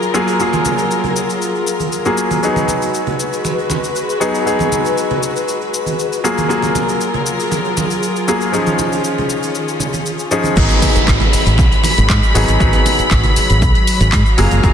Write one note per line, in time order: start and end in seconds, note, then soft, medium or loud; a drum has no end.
0.00 0.11 F#3 medium
0.00 2.39 F#3 medium
0.00 0.11 A#3 medium
0.00 0.12 F4 medium
0.00 2.39 F4 medium
0.00 0.12 G#4 medium
0.00 2.39 G#4 medium
0.00 2.39 A#4 medium
0.00 shaker soft
0.14 0.37 F#3 medium
0.14 0.37 A#3 medium
0.14 0.37 F4 medium
0.14 0.37 G#4 medium
0.14 shaker medium
0.28 shaker soft
0.28 shaker medium
0.39 2.03 F#3 medium
0.39 2.03 A#3 medium
0.39 2.03 F4 medium
0.39 2.04 G#4 medium
0.39 shaker medium
0.39 shaker soft
0.53 muted conga soft
0.53 high conga medium
0.53 shaker soft
0.65 muted conga soft
0.65 low conga medium
0.65 shaker medium
0.78 shaker medium
0.78 shaker soft
0.91 shaker soft
0.91 shaker medium
1.04 low conga medium
1.04 shaker soft
1.16 shaker medium
1.30 shaker soft
1.30 shaker medium
1.42 shaker soft
1.42 shaker medium
1.55 shaker soft
1.67 shaker medium
1.80 high conga medium
1.80 shaker soft
1.80 shaker medium
1.92 shaker soft
1.92 shaker medium
2.05 2.40 F#3 medium
2.05 2.40 A#3 medium
2.05 2.41 F4 medium
2.05 2.41 G#4 medium
2.05 shaker soft
2.18 shaker medium
2.31 high conga medium
2.31 shaker medium
2.31 shaker soft
2.43 4.18 F#3 medium
2.43 6.21 G#3 medium
2.43 4.18 B3 medium
2.43 4.19 D#4 medium
2.43 6.21 F#4 medium
2.43 4.19 G#4 medium
2.43 6.21 B4 medium
2.43 shaker medium
2.43 shaker soft
2.56 muted conga soft
2.56 high conga medium
2.56 shaker soft
2.68 muted conga medium
2.68 low conga medium
2.68 shaker medium
2.82 shaker medium
2.82 shaker soft
2.93 shaker medium
2.93 shaker soft
3.06 low conga medium
3.06 shaker soft
3.20 shaker medium
3.33 shaker medium
3.33 shaker soft
3.44 muted conga medium
3.44 shaker medium
3.44 shaker soft
3.59 shaker soft
3.70 muted conga medium
3.70 high conga medium
3.70 shaker medium
3.83 shaker medium
3.83 shaker soft
3.95 shaker medium
3.95 shaker soft
4.10 shaker soft
4.20 4.43 F#3 medium
4.20 4.43 B3 medium
4.20 4.44 D#4 medium
4.20 4.44 G#4 medium
4.20 shaker medium
4.35 shaker medium
4.35 shaker soft
4.45 6.21 F#3 medium
4.45 6.21 B3 medium
4.45 6.22 D#4 medium
4.45 6.22 G#4 medium
4.45 shaker medium
4.45 shaker soft
4.59 muted conga soft
4.59 high conga medium
4.59 shaker soft
4.72 muted conga medium
4.72 low conga medium
4.72 shaker medium
4.84 shaker medium
4.84 shaker soft
4.97 shaker medium
4.97 shaker soft
5.10 low conga medium
5.10 shaker soft
5.23 shaker medium
5.36 shaker medium
5.36 shaker soft
5.48 shaker medium
5.48 shaker soft
5.61 shaker soft
5.74 shaker medium
5.86 high conga soft
5.86 shaker medium
5.86 shaker soft
5.99 shaker medium
5.99 shaker soft
6.12 shaker soft
6.24 6.47 F#3 medium
6.24 8.51 F#3 medium
6.24 6.47 A#3 medium
6.24 10.53 F4 medium
6.24 6.47 F4 medium
6.24 10.52 G#4 medium
6.24 6.47 G#4 medium
6.24 8.51 A#4 medium
6.24 shaker medium
6.37 high conga medium
6.37 shaker medium
6.37 shaker soft
6.48 8.24 F#3 medium
6.48 8.25 A#3 medium
6.48 8.25 F4 medium
6.48 8.25 G#4 medium
6.48 shaker medium
6.48 shaker soft
6.62 muted conga medium
6.62 high conga medium
6.62 shaker soft
6.75 muted conga medium
6.75 low conga medium
6.75 shaker medium
6.89 shaker medium
6.89 shaker soft
7.00 shaker medium
7.00 shaker soft
7.14 low conga medium
7.14 shaker soft
7.26 shaker medium
7.40 shaker soft
7.40 shaker medium
7.51 muted conga medium
7.51 shaker medium
7.51 shaker soft
7.65 shaker soft
7.77 muted conga medium
7.77 high conga medium
7.77 shaker medium
7.90 shaker soft
7.90 shaker medium
8.03 shaker medium
8.03 shaker soft
8.16 shaker soft
8.28 8.50 F#3 medium
8.28 8.50 A#3 medium
8.28 8.51 F4 medium
8.28 8.51 G#4 medium
8.28 shaker medium
8.40 shaker medium
8.40 shaker soft
8.52 10.55 D#3 medium
8.52 10.28 F3 medium
8.52 10.28 C#4 medium
8.52 10.55 C#4 medium
8.52 10.29 D#4 medium
8.52 10.29 G#4 medium
8.52 shaker medium
8.52 shaker soft
8.66 muted conga soft
8.66 high conga medium
8.66 shaker soft
8.79 muted conga medium
8.79 low conga medium
8.79 shaker medium
8.92 shaker soft
8.92 shaker medium
9.04 shaker medium
9.04 shaker soft
9.18 low conga medium
9.18 shaker soft
9.30 shaker medium
9.43 shaker medium
9.43 shaker soft
9.55 shaker medium
9.55 shaker soft
9.68 shaker soft
9.80 low conga medium
9.80 shaker medium
9.93 high conga medium
9.93 shaker medium
9.93 shaker soft
10.05 shaker medium
10.05 shaker soft
10.18 shaker soft
10.20 shaker soft
10.31 10.54 F3 medium
10.31 10.54 C#4 medium
10.31 10.54 D#4 medium
10.31 10.54 G#4 medium
10.31 shaker medium
10.43 high conga medium
10.43 shaker medium
10.45 shaker soft
10.56 10.66 G#1 loud
10.56 12.32 F#3 medium
10.56 14.73 F#3 medium
10.56 14.34 G#3 medium
10.56 12.32 B3 medium
10.56 12.32 D#4 medium
10.56 12.33 G#4 medium
10.56 14.34 B5 medium
10.56 kick loud
10.56 closed hi-hat medium
10.56 crash loud
10.56 downlifter medium
10.56 shaker medium
10.56 shaker soft
10.69 closed hi-hat soft
10.69 muted conga medium
10.69 high conga medium
10.69 shaker soft
10.80 kick medium
10.80 open hi-hat loud
10.80 muted conga medium
10.80 low conga medium
10.80 shaker medium
10.95 muted fingered electric bass stroke soft
10.95 closed hi-hat medium
10.95 shaker medium
10.95 shaker soft
11.07 11.17 G#1 loud
11.07 kick loud
11.07 clap loud
11.07 closed hi-hat medium
11.07 shaker medium
11.07 shaker soft
11.20 closed hi-hat soft
11.20 low conga loud
11.20 shaker soft
11.33 muted fingered electric bass stroke soft
11.33 open hi-hat loud
11.33 shaker medium
11.45 11.59 G#1 medium
11.45 closed hi-hat medium
11.45 shaker medium
11.45 shaker soft
11.58 11.67 B1 medium
11.58 kick loud
11.58 closed hi-hat medium
11.58 muted conga medium
11.58 shaker medium
11.58 shaker soft
11.72 closed hi-hat soft
11.72 shaker soft
11.83 open hi-hat loud
11.83 muted conga medium
11.83 high conga medium
11.83 shaker medium
11.97 12.06 G#1 loud
11.97 closed hi-hat medium
11.97 shaker medium
11.97 shaker soft
12.09 12.18 G#2 loud
12.09 kick loud
12.09 clap loud
12.09 closed hi-hat medium
12.09 shaker medium
12.09 shaker soft
12.23 shaker soft
12.34 12.44 G#1 loud
12.34 12.57 F#3 medium
12.34 12.57 B3 medium
12.34 12.58 D#4 medium
12.34 12.58 G#4 medium
12.34 open hi-hat loud
12.34 shaker medium
12.48 12.56 G#1 medium
12.48 closed hi-hat medium
12.48 shaker medium
12.48 shaker soft
12.59 14.35 F#3 medium
12.59 14.35 B3 medium
12.59 14.35 D#4 medium
12.59 14.36 G#4 medium
12.59 kick loud
12.59 closed hi-hat medium
12.59 shaker medium
12.59 shaker soft
12.73 closed hi-hat soft
12.73 muted conga medium
12.73 high conga medium
12.73 shaker soft
12.85 open hi-hat loud
12.85 muted conga medium
12.85 low conga medium
12.85 shaker medium
12.98 muted fingered electric bass stroke soft
12.98 closed hi-hat medium
12.98 shaker medium
12.98 shaker soft
13.10 13.20 G#1 medium
13.10 kick loud
13.10 clap loud
13.10 closed hi-hat medium
13.10 shaker medium
13.10 shaker soft
13.23 closed hi-hat soft
13.23 low conga loud
13.23 shaker soft
13.36 muted fingered electric bass stroke soft
13.36 open hi-hat loud
13.36 shaker medium
13.50 13.62 G#1 medium
13.50 closed hi-hat medium
13.50 shaker medium
13.50 shaker soft
13.62 13.71 B1 medium
13.62 kick loud
13.62 closed hi-hat medium
13.62 shaker medium
13.62 shaker soft
13.75 closed hi-hat soft
13.75 shaker soft
13.87 open hi-hat loud
13.87 shaker medium
14.00 14.09 G#1 loud
14.00 closed hi-hat medium
14.00 shaker soft
14.00 shaker medium
14.12 14.22 G#2 loud
14.12 kick loud
14.12 clap loud
14.12 closed hi-hat medium
14.12 shaker soft
14.12 shaker medium
14.26 shaker soft
14.38 14.47 F#1 loud
14.38 14.60 F#3 medium
14.38 14.61 A#3 medium
14.38 14.61 F4 medium
14.38 14.61 G#4 medium
14.38 14.73 F5 medium
14.38 14.73 G#5 medium
14.38 14.73 A#5 medium
14.38 open hi-hat loud
14.38 shaker medium
14.51 14.60 F#1 medium
14.51 closed hi-hat medium
14.51 high conga medium
14.51 shaker medium
14.51 shaker soft
14.63 14.73 F#1 loud
14.63 14.73 F#3 medium
14.63 14.73 A#3 medium
14.63 14.73 F4 medium
14.63 14.73 G#4 medium
14.63 kick loud
14.63 closed hi-hat medium
14.63 shaker medium
14.63 shaker soft